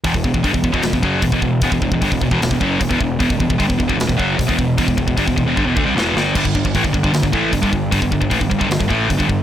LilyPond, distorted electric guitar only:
\new Staff \with { instrumentName = "Distorted electric guitar" } { \clef bass \time 4/4 \key e \minor \tempo 4 = 152 <e, b,>16 <e, b,>16 <e, b,>16 <e, b,>16 <g, d>16 <e, b,>16 <e, b,>16 <e, b,>16 <e, b,>16 <e, b,>16 <fis, cis fis>8 <e, b,>16 <e, b,>16 <e, b,>8 | <e, b,>16 <e, b,>16 <e, b,>16 <e, b,>16 <g, d>16 <e, b,>16 <e, b,>16 <e, b,>16 <e, b,>16 <e, b,>16 <fis, cis fis>8 <e, b,>16 <e, b,>16 <e, b,>8 | <e, b,>16 <e, b,>16 <e, b,>16 <e, b,>16 <g, d>16 <e, b,>16 <e, b,>16 <e, b,>16 <e, b,>16 <e, b,>16 <fis, cis fis>8 <e, b,>16 <e, b,>16 <e, b,>8 | <e, b,>16 <e, b,>16 <e, b,>16 <e, b,>16 <g, d>16 <e, b,>16 <e, b,>16 <e, b,>16 <g, d>16 <e, b,>16 <d a>16 <c g>16 <e, b, e>8 <g, d g>8 |
<g, d>16 <g, d>16 <g, d>16 <g, d>16 <a, e>16 <g, d>16 <g, d>16 <g, d>16 <g, d>16 <g, d>16 <a, e a>8 <g, d>16 <g, d>16 <g, d>8 | <g, d>16 <g, d>16 <g, d>16 <g, d>16 <a, e>16 <g, d>16 <g, d>16 <g, d>16 <g, d>16 <g, d>16 <a, e a>8 <g, d>16 <g, d>16 <g, d>8 | }